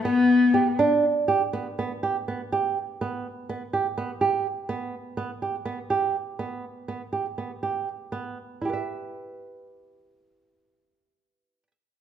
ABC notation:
X:1
M:7/8
L:1/8
Q:1/4=122
K:G
V:1 name="Nylon-string guitar"
B,2 G D2 G B, | B, G B, G2 B,2 | B, G B, G2 B,2 | B, G B, G2 B,2 |
B, G B, G2 B,2 | [EGBe]6- [EGBe]- | [EGBe]6- [EGBe] |]
V:2 name="Cello"
B,3 z4 | z6 z | z6 z | z6 z |
z6 z | z6 z | z6 z |]